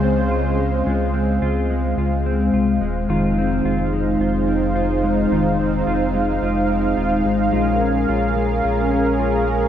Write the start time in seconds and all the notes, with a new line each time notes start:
Already playing: C#2 C#3 G#3 F4 C5 F5
0.03 C4
0.31 F4
0.59 G#3
0.86 C#2 G#3 F4
1.14 C4
1.42 C#2 F4
1.70 G#3
1.97 C#2 F4
2.26 C4
2.53 C2 F4
2.81 D#1 G#3
3.08 F1 D#3 D#4 F4 C5
3.38 C4
3.64 F1 F4
3.93 G#3
4.19 F1 F4
4.48 C4
4.76 F4
5.03 G#3
5.31 F1 D#3 F4
5.59 C4
5.87 F1 F4
6.15 G#3
6.42 F1 F4
6.70 C4
6.97 D#1 F4
7.25 G#1 G#3
7.52 A#1 G#3 C#4 F4 G#4 A#4
7.81 C#4
8.09 A#1 F4
8.36 G#3
8.64 A#1 F4
8.91 C#4
9.19 F4
9.48 G#3